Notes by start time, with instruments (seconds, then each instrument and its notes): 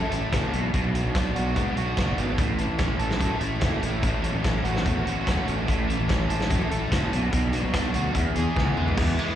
Already playing: overdriven electric guitar A2 E3 A3 C#4 E4 A4
0.11 fingered electric bass A1, overdriven electric guitar C#4 E4 A4, closed hi-hat
0.32 fingered electric bass F#1, overdriven electric guitar A3 C#4 E4 A4, kick, snare, closed hi-hat
0.52 fingered electric bass B1, overdriven electric guitar B2 F#3 B3 D4 F#4, closed hi-hat
0.72 fingered electric bass B1, overdriven electric guitar B2 F#3 B3 D4 F#4, kick, closed hi-hat
0.93 overdriven electric guitar F#3 B3 D4 F#4, closed hi-hat
1.06 fingered electric bass B1
1.14 overdriven electric guitar F#3 B3 D4 F#4, kick, snare, closed hi-hat
1.36 fingered electric bass B1, overdriven electric guitar F#4, closed hi-hat
1.55 fingered electric bass G#2, overdriven electric guitar B2 F#3 B3 D4 F#4, kick, closed hi-hat
1.76 fingered electric bass B1, overdriven electric guitar B3 D4 F#4, closed hi-hat
1.97 fingered electric bass F#1, overdriven electric guitar F#3 B3 D4 F#4, kick, snare, closed hi-hat
2.18 fingered electric bass G#1, overdriven electric guitar B3 D4 F#4, closed hi-hat
2.38 fingered electric bass A1, overdriven electric guitar A2 A3 C#4 E4 A4, kick, closed hi-hat
2.58 overdriven electric guitar E3 C#4 E4 A4, closed hi-hat
2.69 fingered electric bass A1
2.78 overdriven electric guitar A3 C#4 E4 A4, kick, snare, closed hi-hat
2.99 fingered electric bass A1, overdriven electric guitar A4, closed hi-hat
3.11 snare
3.19 fingered electric bass F#2, overdriven electric guitar A3 C#4 E4 A4, kick, closed hi-hat
3.40 fingered electric bass A1, overdriven electric guitar C#4 E4 A4, closed hi-hat
3.61 fingered electric bass F#1, overdriven electric guitar A3 C#4 E4 A4, kick, snare, closed hi-hat
3.81 fingered electric bass A1, overdriven electric guitar A3 C#4 E4 A4, closed hi-hat
4.02 fingered electric bass A1, overdriven electric guitar A2 A3 C#4 F#4 A4, kick, closed hi-hat
4.22 overdriven electric guitar F#3 C#4 F#4 A4, closed hi-hat
4.34 fingered electric bass A1
4.44 overdriven electric guitar A3 C#4 F#4 A4, kick, snare, closed hi-hat
4.64 fingered electric bass A1, overdriven electric guitar F#4, closed hi-hat
4.76 snare
4.84 fingered electric bass E2, overdriven electric guitar A3 C#4 F#4 A4, kick, closed hi-hat
5.05 fingered electric bass A1, overdriven electric guitar C#4 F#4 A4, closed hi-hat
5.27 fingered electric bass E1, overdriven electric guitar A3 C#4 F#4 A4, kick, snare, closed hi-hat
5.46 fingered electric bass A1, overdriven electric guitar A3 C#4 F#4 A4, closed hi-hat
5.67 fingered electric bass A1, overdriven electric guitar A2 A3 C#4 E4 A4, kick, closed hi-hat
5.87 overdriven electric guitar E3 E4 A4, closed hi-hat
5.91 overdriven electric guitar C#4
6.01 fingered electric bass A1
6.08 overdriven electric guitar A3 C#4 E4 A4, kick, snare, closed hi-hat
6.29 fingered electric bass A1, overdriven electric guitar A4, closed hi-hat
6.41 snare
6.50 fingered electric bass F#2, overdriven electric guitar A3 C#4 E4 A4, kick, closed hi-hat
6.70 fingered electric bass A1, overdriven electric guitar C#4 E4 A4, closed hi-hat
6.91 fingered electric bass F#1, overdriven electric guitar A3 C#4 E4 A4, kick, snare, closed hi-hat
7.12 fingered electric bass B1, overdriven electric guitar B2 F#3 B3 D4 F#4, closed hi-hat
7.32 fingered electric bass B1, overdriven electric guitar B2 F#3 B3 D4 F#4, kick, closed hi-hat
7.52 overdriven electric guitar F#3 B3 D4 F#4, closed hi-hat
7.64 fingered electric bass B1
7.73 overdriven electric guitar F#3 B3 D4 F#4, kick, snare, closed hi-hat
7.94 fingered electric bass D2, overdriven electric guitar F#4, closed hi-hat
8.15 fingered electric bass E2, overdriven electric guitar E2 E3 B3 E4 G#4, kick, closed hi-hat
8.36 fingered electric bass E2, overdriven electric guitar B3 E4 G#4, closed hi-hat
8.56 fingered electric bass C#2, overdriven electric guitar E3 B3 E4 G#4, kick, snare
8.67 high tom
8.77 fingered electric bass E2, overdriven electric guitar G#3 B3 E4 G#4, mid tom
8.88 floor tom
8.97 overdriven electric guitar E2 E3 G#3 B3 E4, fingered electric bass E2, kick, crash
9.16 overdriven electric guitar G#3 B3 E4, ride